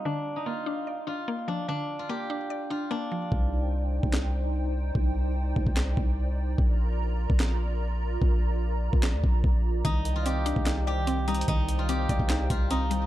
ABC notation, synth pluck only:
X:1
M:4/4
L:1/8
Q:1/4=147
K:Cm
V:1 name="Synth pluck"
D,2 B, D d D B, F, | D,2 B, D d D B, F, | z8 | z8 |
z8 | z8 | E,2 C D E d C G, | E,2 C d E2 C G, |]